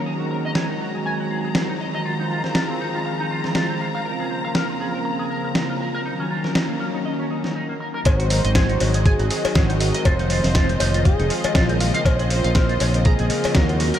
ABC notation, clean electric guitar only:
X:1
M:4/4
L:1/16
Q:"Swing 16ths" 1/4=120
K:Abmix
V:1 name="Clean electric guitar"
A G B e A E G A a G A A A E e e | F E F c F C E F f E F F F C f f | B A c f B F A B b A B B B F B B | E D F B E B, D E e D E E E B, B B |
A G B e A E G A a G A A A E e e | F E F c F C E F f E F F F C f f | B A c f B F A B b A B B B F B B |]